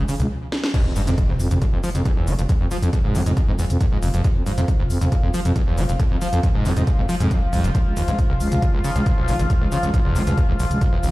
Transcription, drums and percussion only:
0.08 open hi-hat, shaker
0.20 closed hi-hat, mid tom, shaker
0.52 snare
0.64 snare
0.74 kick, closed hi-hat, crash, shaker
0.96 open hi-hat, shaker
1.07 closed hi-hat, shaker
1.18 kick, closed hi-hat, shaker
1.29 mid tom
1.40 open hi-hat, shaker
1.51 closed hi-hat, mid tom, shaker
1.62 kick, closed hi-hat, shaker
1.84 open hi-hat, shaker
1.95 closed hi-hat, mid tom, shaker
2.05 kick, closed hi-hat, shaker
2.27 open hi-hat, shaker
2.39 closed hi-hat, shaker
2.49 kick, closed hi-hat, shaker
2.71 open hi-hat, shaker
2.82 closed hi-hat, shaker
2.93 kick, closed hi-hat, shaker
3.04 mid tom
3.15 open hi-hat, shaker
3.26 closed hi-hat, mid tom, shaker
3.37 kick, closed hi-hat, shaker
3.59 open hi-hat, shaker
3.70 closed hi-hat, mid tom, shaker
3.81 kick, closed hi-hat, shaker
4.03 open hi-hat, shaker
4.14 closed hi-hat, shaker
4.24 kick, closed hi-hat, shaker
4.46 open hi-hat, shaker
4.58 closed hi-hat, shaker
4.68 kick, closed hi-hat, shaker
4.80 mid tom
4.90 open hi-hat, shaker
5.01 closed hi-hat, mid tom, shaker
5.12 kick, closed hi-hat, shaker
5.34 open hi-hat, shaker
5.45 closed hi-hat, mid tom, shaker
5.56 kick, closed hi-hat, shaker
5.78 open hi-hat, shaker
5.89 closed hi-hat, shaker
6.00 kick, closed hi-hat, shaker
6.21 open hi-hat, shaker
6.33 closed hi-hat, shaker
6.43 kick, closed hi-hat, shaker
6.55 mid tom
6.65 open hi-hat, shaker
6.77 closed hi-hat, mid tom, shaker
6.87 kick, closed hi-hat, shaker
7.09 open hi-hat, shaker
7.20 closed hi-hat, mid tom, shaker
7.31 kick, closed hi-hat, shaker
7.53 open hi-hat, shaker
7.64 closed hi-hat, shaker
7.75 kick, closed hi-hat, shaker
7.97 open hi-hat, shaker
8.08 closed hi-hat, shaker
8.19 kick, closed hi-hat, shaker
8.30 mid tom
8.40 open hi-hat, shaker
8.52 closed hi-hat, mid tom, shaker
8.62 kick, closed hi-hat, shaker
8.84 open hi-hat, shaker
8.96 closed hi-hat, mid tom, shaker
9.06 kick, closed hi-hat, shaker
9.28 open hi-hat, shaker
9.39 closed hi-hat, shaker
9.50 kick, closed hi-hat, shaker
9.72 open hi-hat, shaker
9.83 closed hi-hat, shaker
9.94 kick, closed hi-hat, shaker
10.05 mid tom
10.16 open hi-hat, shaker
10.27 closed hi-hat, mid tom, shaker
10.38 kick, closed hi-hat, shaker
10.60 open hi-hat, shaker
10.71 closed hi-hat, mid tom, shaker
10.81 kick, closed hi-hat, shaker
11.03 open hi-hat, shaker

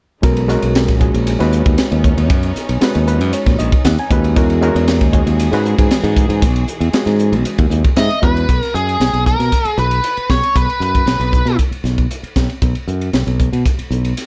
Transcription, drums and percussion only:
0.23 kick, hi-hat pedal, ride
0.37 ride
0.49 snare, hi-hat pedal
0.62 ride
0.75 snare, hi-hat pedal, ride
0.88 kick, snare, ride
1.01 kick, hi-hat pedal
1.14 ride
1.27 hi-hat pedal, ride
1.40 snare, ride
1.52 hi-hat pedal
1.66 kick, ride
1.78 snare, hi-hat pedal, ride
1.92 ride
2.04 kick, hi-hat pedal
2.18 ride
2.30 kick, hi-hat pedal, ride
2.43 ride
2.56 snare, hi-hat pedal
2.69 ride
2.81 snare, hi-hat pedal, ride
2.95 ride
3.07 hi-hat pedal
3.21 ride
3.33 hi-hat pedal, ride
3.46 kick, snare, ride
3.59 hi-hat pedal
3.72 kick, ride
3.85 snare, hi-hat pedal, ride
3.98 ride
4.11 kick, hi-hat pedal
4.24 ride
4.36 kick, hi-hat pedal, ride
4.50 ride
4.62 hi-hat pedal
4.76 ride
4.88 snare, hi-hat pedal, ride
5.01 kick, snare, ride
5.13 kick, hi-hat pedal
5.27 ride
5.39 hi-hat pedal, ride
5.53 snare, ride
5.65 hi-hat pedal
5.78 kick, ride
5.91 snare, hi-hat pedal, ride
6.04 ride
6.17 kick, hi-hat pedal
6.30 ride
6.42 kick, hi-hat pedal, ride
6.56 ride
6.68 hi-hat pedal
6.81 ride
6.93 snare, hi-hat pedal, ride
7.07 snare, ride
7.19 hi-hat pedal
7.33 ride
7.45 hi-hat pedal, ride
7.58 kick, ride
7.71 hi-hat pedal
7.84 kick, ride
7.96 snare, hi-hat pedal, ride
8.10 ride
8.23 kick, hi-hat pedal
8.37 ride
8.49 kick, hi-hat pedal, ride
8.63 snare, ride
8.75 hi-hat pedal
8.89 ride
9.01 snare, hi-hat pedal, ride
9.14 ride
9.26 kick, hi-hat pedal
9.40 snare, ride
9.52 kick, hi-hat pedal, ride
9.65 ride
9.78 hi-hat pedal
9.91 ride
10.04 hi-hat pedal, ride
10.17 ride
10.30 kick, snare, hi-hat pedal
10.43 ride
10.56 kick, hi-hat pedal, ride
10.70 ride
10.81 hi-hat pedal
10.95 kick, ride
11.07 snare, hi-hat pedal, ride
11.21 ride
11.33 kick, hi-hat pedal
11.47 ride
11.59 kick, hi-hat pedal, ride
11.72 ride
11.85 snare, hi-hat pedal
11.98 kick, ride
12.11 hi-hat pedal, ride
12.24 ride
12.36 kick, snare, hi-hat pedal
12.50 ride
12.62 kick, hi-hat pedal, ride
12.75 ride
12.88 hi-hat pedal
13.01 ride
13.13 snare, hi-hat pedal, ride
13.27 ride
13.40 kick, hi-hat pedal
13.53 ride
13.66 kick, hi-hat pedal, ride
13.79 ride
13.92 hi-hat pedal
14.05 ride
14.17 snare, hi-hat pedal, ride

